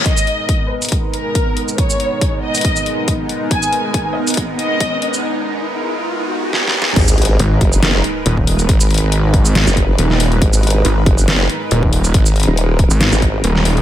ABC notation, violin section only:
X:1
M:4/4
L:1/8
Q:"Swing 16ths" 1/4=139
K:G#m
V:1 name="Violin section"
d3 B z A3 | c3 d3 z2 | g3 d z d3 | z8 |
z8 | z8 | z8 | z8 |]